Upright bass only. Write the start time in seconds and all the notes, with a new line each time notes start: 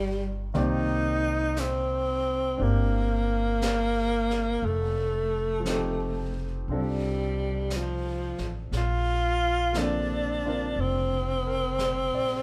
Already playing: G1
0.55 C2
2.60 G1
4.62 F1
6.68 C2
8.39 A1
8.72 A#1
10.76 F1
12.12 A#1